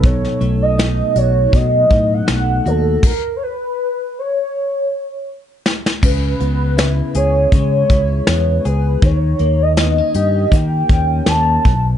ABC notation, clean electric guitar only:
X:1
M:4/4
L:1/16
Q:"Swing 16ths" 1/4=80
K:D#phr
V:1 name="Clean electric guitar"
B,,2 =A,2 D2 F2 F,2 D2 A,2 F2 | z16 | C,2 B,2 E2 G2 G,2 E2 B,2 G2 | D,2 A,2 B, C =G2 A,2 C2 A,2 B,,2 |]